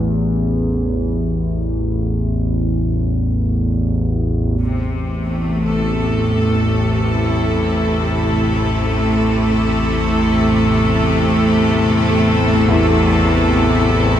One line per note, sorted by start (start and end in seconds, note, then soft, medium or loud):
0.00 4.58 A1 medium
0.00 4.60 E2 medium
4.59 14.20 A1 medium
4.59 14.20 E2 medium
4.59 14.20 C3 medium
5.27 14.20 A3 medium
5.65 14.20 A4 medium
7.10 14.20 E4 medium
12.68 14.20 E2 medium